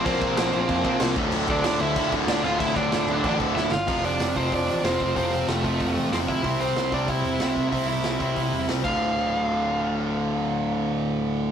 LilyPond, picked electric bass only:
\new Staff \with { instrumentName = "Picked electric bass" } { \clef bass \time 4/4 \key d \minor \tempo 4 = 188 bes,,8 bes,,8 bes,,8 bes,,8 f,8 bes,,8 c,8 d,,8 | d,,4 d,,8 d,8 d,,8 d,,8 d,,8 d,,8 | d,,8 d,,8 d,,8 d,,8 a,,8 d,,8 d,,8 g,,8 | f,,4 f,,8 f,,8 f,,8 a,,8 f,,8 f,,8 |
f,,4 f,,8 f,,8 f,,8 a,,8 f,,8 d,,8 | c,4 c,8 c,8 c,8 e,,8 c,8 c,8 | c,4 c,8 c,8 c,8 e,,8 c,8 d,,8~ | d,,1~ |
d,,1 | }